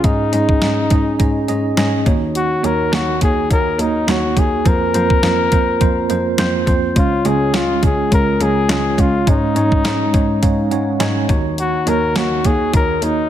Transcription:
0.04 G#2 C#4 D#4 G#4 D#5, kick, closed hi-hat
0.32 G#2 C#4 D#4 G#4 D#5, closed hi-hat
0.49 kick
0.61 G#2 C#4 D#4 G#4 D#5, snare, closed hi-hat
0.90 G#2 C#4 D#4 G#4 D#5, kick, closed hi-hat
1.19 G#2 C#4 D#4 G#4 D#5, kick, closed hi-hat
1.48 G#2 C#4 D#4 G#4 D#5, closed hi-hat
1.77 G#2 C#4 D#4 G#4 D#5, snare, closed hi-hat
2.06 D#2 D#3 A#3 D#4 F#4 C#5, kick, closed hi-hat
2.35 F#4, closed hi-hat
2.63 D#2 A#3 D#4 F#4 A#4 C#5, closed hi-hat
2.92 D#2 A#3 D#4 F#4 C#5, snare, closed hi-hat
3.21 D#2 A#3 D#4 F#4 G#4 C#5, kick, closed hi-hat
3.50 D#2 A#3 D#4 F#4 A#4 C#5, kick, closed hi-hat
3.78 D#2 A#3 D#4 F#4 C#5, closed hi-hat
4.07 D#2 A#3 D#4 F#4 C#5, snare, closed hi-hat
4.36 D#2 A#3 D#4 F#4 G#4, kick, closed hi-hat
4.65 F2 A#3 C4 F4 A#4 C5, kick, closed hi-hat
4.94 F2 A#3 C4 F4 C5, closed hi-hat
5.10 kick
5.23 F2 A#3 C4 F4 C5, snare, closed hi-hat
5.52 F2 A#3 C4 F4 C5, kick, closed hi-hat
5.80 F2 A#3 C4 F4 C5, kick, closed hi-hat
6.09 F2 A#3 C4 F4 C5, closed hi-hat
6.38 F2 A#3 C4 F4 C5, snare, closed hi-hat
6.67 F2 A#3 C4 F4 C5, kick, closed hi-hat
6.96 C#2 C#3 G#3 C#4 F4 C#5, kick, closed hi-hat
7.25 C#2 G#3 C#4 F4 G#4 C#5, closed hi-hat
7.54 C#2 G#3 C#4 F4 C#5, snare, clap, closed hi-hat
7.82 C#2 G#3 C#4 F4 G#4 C#5, kick, closed hi-hat
8.11 C#2 G#3 C#4 F4 A#4 C#5, kick, closed hi-hat
8.40 C#2 G#3 C#4 F4 G#4 C#5, closed hi-hat
8.69 C#2 G#3 C#4 F4 G#4 C#5, snare, clap, closed hi-hat
8.98 C#2 G#3 C#4 F4 C#5, kick, closed hi-hat
9.26 G#2 G#3 C#4 D#4 C#5, kick, closed hi-hat
9.55 G#2 G#3 C#4 D#4 C#5, closed hi-hat
9.72 kick
9.84 G#2 G#3 C#4 D#4 C#5, snare, clap, closed hi-hat
10.13 G#2 G#3 C#4 D#4 C#5, kick, closed hi-hat
10.42 G#2 G#3 C#4 D#4 C#5 F5, kick, closed hi-hat
10.71 G#2 G#3 C#4 D#4 C#5 F#5, closed hi-hat
10.99 G#2 G#3 C#4 D#4 C#5 G#5, snare, clap, closed hi-hat
11.28 D#2 D#3 A#3 D#4 F#4 C#5 A#5, kick, closed hi-hat
11.58 F#4, closed hi-hat
11.86 D#2 A#3 D#4 F#4 A#4 C#5, closed hi-hat
12.15 D#2 A#3 D#4 F#4 C#5, snare, clap, closed hi-hat
12.44 D#2 A#3 D#4 F#4 G#4 C#5, kick, closed hi-hat
12.73 D#2 A#3 D#4 F#4 A#4 C#5, kick, closed hi-hat
13.02 D#2 A#3 D#4 F#4 C#5, closed hi-hat

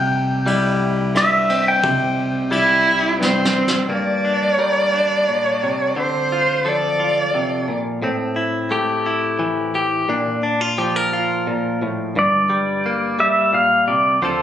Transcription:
Already playing: C2 C3 G3 G5
0.46 G3 E4, ride
1.15 G2 E5, cross-stick, ride
1.49 C4, ride
1.68 G5
1.83 C2 C3, kick, ride
2.51 G3 E4, ride
3.21 G2 C4, snare
3.45 snare
3.56 C4
3.68 snare
3.89 G2 A#3 D5
4.25 D4
4.58 G3 A#4
4.94 D4
5.29 A#2
5.63 C3
5.96 D3 C4 C5
6.32 F4
6.65 F3 A4 D5
7.00 F4
7.35 C3
7.68 A#2
8.02 A2 C4
8.36 E4
8.71 A3 G4
9.06 E4
9.39 E3
9.75 G4
10.09 A#2 D4
10.43 D4
10.61 F4
10.78 F3 G4
10.96 A#4
11.13 F4
11.47 A#2
11.82 A2
12.16 G1 G2 D5
12.50 G3
12.86 A#3
13.19 G3 E5
13.53 A#2 F5
13.88 C3 D5
14.21 D2 D3 F3 C4 F4 A4 C5

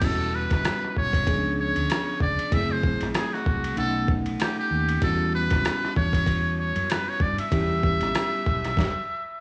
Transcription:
0.01 E1 G3 B3 C#4 E4 F#4 A4, kick, crash, ride
0.35 B4
0.50 G1, kick, cross-stick, ride
0.65 cross-stick, hi-hat pedal, ride
0.84 cross-stick
0.96 B1 C#5, kick
1.13 kick, ride
1.26 C#2 D3 B3 C#4 D4 G#4, kick, ride
1.32 F3
1.60 C#5
1.76 D2, ride
1.90 cross-stick, hi-hat pedal, ride
2.20 C#2 D5, kick
2.39 ride
2.51 F#1 F#3 A3 C4 E4 G#4 E5, kick, ride
2.72 C5
2.84 kick
3.01 A1, cross-stick, ride
3.15 G#4, cross-stick, hi-hat pedal, ride
3.34 F#4, cross-stick
3.46 C2, kick
3.64 ride
3.76 B1 A3 B3 C#4 D#4 A4 F#5, ride
4.08 kick
4.26 ride
4.40 G4, cross-stick, hi-hat pedal, ride
4.59 G4
4.70 D#2
4.88 ride
5.01 E2 G3 B3 C#4 E4 F#4 A4, kick, ride
5.35 B4
5.50 C#2, kick, cross-stick, ride
5.65 cross-stick, hi-hat pedal, ride
5.85 cross-stick
5.96 E2 C#5, kick
6.13 kick, ride
6.27 kick, ride
6.60 C#5
6.76 F#2, ride
6.90 B4, cross-stick, hi-hat pedal, ride
7.09 C#5
7.20 G2 D5, kick
7.39 E5, ride
7.51 E2 G3 B3 C#4 E4 G4, kick, ride
7.83 kick
8.01 A1, cross-stick, ride
8.15 cross-stick, hi-hat pedal, ride
8.46 B1, kick
8.64 cross-stick, ride
8.77 kick, snare

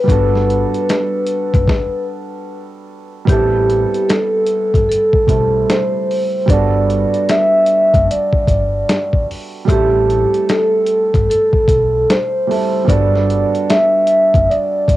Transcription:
Already playing: B4
0.04 G3 B3
0.08 G1 D4 F#4 A4, kick, closed hi-hat
0.35 snare
0.50 closed hi-hat
0.74 closed hi-hat
0.89 snare, closed hi-hat
1.27 closed hi-hat
1.54 F#1, kick, closed hi-hat
1.68 kick, snare
3.25 A1 G3 B3 C4, kick, closed hi-hat
3.30 E4 G4 A4
3.70 closed hi-hat
3.94 closed hi-hat
4.09 A4, snare, closed hi-hat
4.47 closed hi-hat
4.74 G1, kick, closed hi-hat
4.89 A4, closed hi-hat
5.13 kick
5.27 B1 G3 A3 C4 E4 A4, kick, closed hi-hat
5.70 C5, snare, closed hi-hat
6.11 open hi-hat
6.46 G1 G3 B3 D4, kick, closed hi-hat
6.50 F#4 A4 D5
6.90 closed hi-hat
7.14 closed hi-hat
7.29 E5, snare, closed hi-hat
7.66 closed hi-hat
7.94 F#1, kick, closed hi-hat
8.11 D5, closed hi-hat
8.33 kick
8.48 G1, kick, closed hi-hat
8.89 snare, closed hi-hat
9.13 kick
9.31 open hi-hat
9.65 A1 G3 A3 C4, kick
9.70 E4 G4 A4, closed hi-hat
10.10 closed hi-hat
10.34 closed hi-hat
10.49 A4, snare, closed hi-hat
10.86 closed hi-hat
11.14 G1, kick, closed hi-hat
11.30 A4, closed hi-hat
11.53 kick
11.68 B1, kick, closed hi-hat
12.10 C5, snare, closed hi-hat
12.47 G3 A3 C4 E4 A4, open hi-hat
12.85 G1 G3 B3 D4, kick
12.89 F#4 A4 D5, closed hi-hat
13.16 snare
13.30 closed hi-hat
13.55 closed hi-hat
13.70 E5, snare, closed hi-hat
14.07 closed hi-hat
14.34 F#1, kick, closed hi-hat
14.50 D5, closed hi-hat
14.88 G1, kick, closed hi-hat

